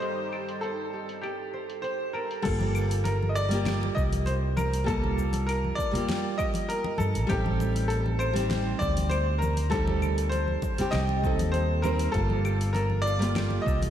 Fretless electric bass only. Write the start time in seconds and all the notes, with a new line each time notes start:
2.45 G1
3.97 C2
7.00 G2
7.15 A#1
7.30 A1
8.81 D2
10.93 C2
11.40 D#2
12.15 G1
13.66 C2